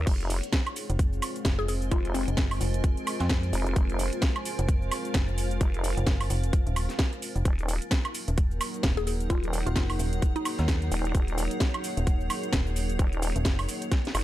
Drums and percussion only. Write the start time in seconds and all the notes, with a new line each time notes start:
0.07 kick, closed hi-hat, crash, shaker
0.20 closed hi-hat, shaker
0.30 open hi-hat, shaker
0.43 closed hi-hat, shaker
0.53 kick, snare, closed hi-hat, shaker
0.67 closed hi-hat, high woodblock, shaker
0.76 open hi-hat, shaker
0.90 closed hi-hat, shaker
0.99 kick, closed hi-hat, shaker
1.13 shaker
1.22 open hi-hat, high woodblock, shaker
1.36 closed hi-hat, shaker
1.45 kick, snare, closed hi-hat, shaker
1.59 shaker
1.68 open hi-hat, shaker
1.82 closed hi-hat, shaker
1.92 kick, closed hi-hat, shaker
2.05 closed hi-hat, shaker
2.15 open hi-hat, shaker
2.28 closed hi-hat, shaker
2.37 kick, snare, closed hi-hat, shaker
2.51 open hi-hat, high woodblock, shaker
2.61 open hi-hat, shaker
2.74 closed hi-hat, shaker
2.84 kick, closed hi-hat, shaker
2.97 closed hi-hat, shaker
3.07 open hi-hat, high woodblock, shaker
3.20 snare, closed hi-hat, shaker
3.29 kick, snare, closed hi-hat, shaker
3.43 closed hi-hat, shaker
3.53 open hi-hat, shaker
3.67 closed hi-hat, shaker
3.76 kick, closed hi-hat, shaker
3.90 closed hi-hat, shaker
3.99 open hi-hat, shaker
4.13 closed hi-hat, shaker
4.22 kick, snare, closed hi-hat, shaker
4.36 closed hi-hat, high woodblock, shaker
4.45 open hi-hat, shaker
4.59 closed hi-hat, shaker
4.69 kick, closed hi-hat, shaker
4.82 shaker
4.92 open hi-hat, high woodblock, shaker
5.05 closed hi-hat, shaker
5.14 kick, snare, closed hi-hat, shaker
5.28 shaker
5.38 open hi-hat, shaker
5.51 closed hi-hat, shaker
5.61 kick, closed hi-hat, shaker
5.74 closed hi-hat, shaker
5.84 open hi-hat, shaker
5.97 closed hi-hat, shaker
6.07 kick, snare, closed hi-hat, shaker
6.21 open hi-hat, high woodblock, shaker
6.30 open hi-hat, shaker
6.44 closed hi-hat, shaker
6.53 kick, closed hi-hat, shaker
6.67 closed hi-hat, shaker
6.76 open hi-hat, high woodblock, shaker
6.89 snare, closed hi-hat, shaker
6.99 kick, snare, closed hi-hat, shaker
7.13 closed hi-hat, shaker
7.22 open hi-hat, shaker
7.36 closed hi-hat, shaker
7.45 kick, closed hi-hat, shaker
7.59 closed hi-hat, shaker
7.68 open hi-hat, shaker
7.82 closed hi-hat, shaker
7.91 kick, snare, closed hi-hat, shaker
8.05 closed hi-hat, high woodblock, shaker
8.15 open hi-hat, shaker
8.28 closed hi-hat, shaker
8.38 kick, closed hi-hat, shaker
8.51 shaker
8.61 open hi-hat, high woodblock, shaker
8.74 closed hi-hat, shaker
8.83 kick, snare, closed hi-hat, shaker
8.97 shaker
9.07 open hi-hat, shaker
9.20 closed hi-hat, shaker
9.30 kick, closed hi-hat, shaker
9.44 closed hi-hat, shaker
9.53 open hi-hat, shaker
9.67 closed hi-hat, shaker
9.76 kick, snare, closed hi-hat, shaker
9.90 open hi-hat, high woodblock, shaker
9.99 open hi-hat, shaker
10.13 closed hi-hat, shaker
10.22 kick, closed hi-hat, shaker
10.36 closed hi-hat, shaker
10.45 open hi-hat, high woodblock, shaker
10.58 snare, closed hi-hat, shaker
10.68 kick, snare, closed hi-hat, shaker
10.82 closed hi-hat, shaker
10.92 open hi-hat, shaker
11.05 closed hi-hat, shaker
11.15 kick, closed hi-hat, shaker
11.28 closed hi-hat, shaker
11.38 open hi-hat, shaker
11.51 closed hi-hat, shaker
11.60 kick, snare, closed hi-hat, shaker
11.74 closed hi-hat, high woodblock, shaker
11.84 open hi-hat, shaker
11.97 closed hi-hat, shaker
12.07 kick, closed hi-hat, shaker
12.21 shaker
12.30 open hi-hat, high woodblock, shaker
12.43 closed hi-hat, shaker
12.53 kick, snare, closed hi-hat, shaker
12.67 shaker
12.76 open hi-hat, shaker
12.90 closed hi-hat, shaker
12.99 kick, closed hi-hat, shaker
13.13 closed hi-hat, shaker
13.22 open hi-hat, shaker
13.36 closed hi-hat, shaker
13.45 kick, snare, closed hi-hat, shaker
13.59 open hi-hat, high woodblock, shaker
13.69 open hi-hat, shaker
13.82 closed hi-hat, shaker
13.92 kick, snare, closed hi-hat, shaker
14.05 snare, closed hi-hat, shaker
14.15 open hi-hat, high woodblock, shaker